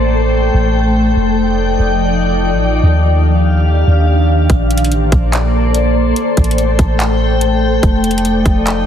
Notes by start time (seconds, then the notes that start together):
Already playing: A1 A3 A4 C5 G5
0.54 A1
1.16 F1 F3 D#4 D5 G5
1.79 F1
2.52 A1
2.83 D#2 D#3 D4 G4 F5
3.87 D#2
4.50 A#1 A#3 A4 C5 D5, kick, closed hi-hat
4.71 closed hi-hat
4.78 closed hi-hat
4.85 closed hi-hat
4.91 A1, closed hi-hat
5.12 A#1, kick, closed hi-hat
5.33 clap, closed hi-hat
5.75 closed hi-hat
6.16 A3 G5, closed hi-hat
6.37 A1, kick, closed hi-hat
6.44 closed hi-hat
6.51 closed hi-hat
6.58 closed hi-hat
6.79 A1, kick, closed hi-hat
7.00 clap, closed hi-hat
7.41 closed hi-hat
7.83 F1 F3 D#4 D5, kick, closed hi-hat
8.04 closed hi-hat
8.11 closed hi-hat
8.18 closed hi-hat
8.25 closed hi-hat
8.46 F1, kick, closed hi-hat
8.67 clap, closed hi-hat